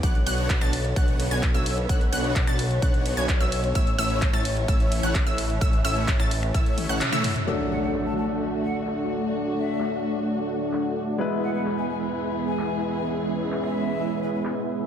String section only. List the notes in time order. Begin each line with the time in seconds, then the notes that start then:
0.03 D3 B3 C#5
3.75 E3 A3
7.47 D2 D3 A3 F#4
11.19 E2 E3 B3 G#4
13.06 C#4